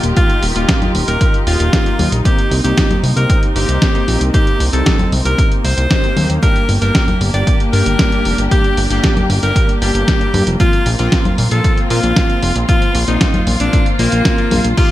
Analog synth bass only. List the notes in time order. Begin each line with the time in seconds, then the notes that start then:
0.04 D#1
0.43 D#1
0.56 D#1
0.95 D#1
1.08 D#1
1.47 D#1
1.60 D#1
1.99 D#2
2.12 A#1
2.51 C2
2.64 C2
3.03 C2
3.16 C2
3.56 G1
3.69 C2
4.08 A#1
4.21 C2
4.60 C2
4.73 C2
5.12 C2
5.25 C2
5.64 C2
5.77 C2
6.17 D#2
6.30 D#2
6.69 G1
6.82 G1
7.21 G1
7.34 G1
7.73 G2
7.86 G1
8.25 F1
8.38 G1
8.77 G1
8.91 G1
9.30 G1
9.43 G1
9.82 G1
9.95 G1
10.34 G2
10.47 F1
10.86 A#1
10.99 A#1
11.38 A#1
11.52 A#1
11.91 A#2
12.04 A#1
12.43 F1
12.56 A#1
12.95 A#1
13.08 A#1
13.47 A#1
13.60 A#1
13.99 A#1
14.12 A#1
14.51 A#1
14.65 A#1